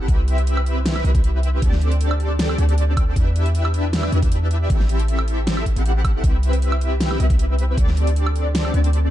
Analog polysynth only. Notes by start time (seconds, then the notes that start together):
0.08 C4 E4 G4 B4 E5
1.05 C4 E4 G4 B4 E5
1.62 C4 D4 G4 A4 D5
2.59 C4 D4 G4 A4 D5
3.16 D4 E4 G4 B4 E5
4.12 D4 E4 G4 B4 E5
4.70 C4 E4 G4 A4 E5
5.76 C4 E4 G4 A4 F#5
6.24 C4 E4 G4 B4 E5
7.20 C4 E4 G4 B4 E5
7.78 C4 D4 G4 A4 D5
8.74 C4 D4 G4 A4 D5